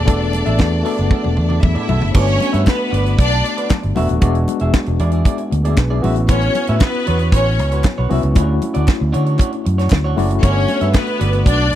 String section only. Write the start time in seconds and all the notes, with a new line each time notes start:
Already playing: D4 D5
1.61 E4 E5
2.14 C#4 C#5
2.66 B3 B4
3.18 D4 D5
6.29 C#4 C#5
6.80 B3 B4
7.33 C#4 C#5
10.42 C#4 C#5
10.94 B3 B4
11.46 D4 D5